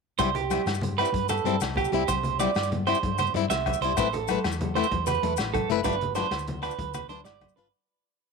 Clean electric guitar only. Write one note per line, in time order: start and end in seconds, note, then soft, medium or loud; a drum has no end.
0.19 0.34 C5 loud
0.36 0.65 G4 medium
0.98 1.28 B4 medium
1.29 1.59 A4 medium
1.77 1.92 G4 medium
1.93 2.08 G4 medium
2.08 2.38 C5 medium
2.40 2.69 D5 medium
2.87 3.17 C5 medium
3.19 3.34 C5 medium
3.35 muted clean electric guitar stroke medium
3.50 3.80 E5 medium
3.82 3.96 C5 medium
3.98 4.12 C5 medium
4.13 4.43 A4 medium
4.75 5.05 C5 medium
5.07 5.37 B4 medium
5.54 5.69 A4 medium
5.84 6.15 B4 medium
6.15 6.46 C5 medium
6.63 6.93 B4 medium
6.95 7.09 B4 medium
7.09 7.24 C5 medium
7.25 7.55 D5 medium
7.56 7.72 B4 medium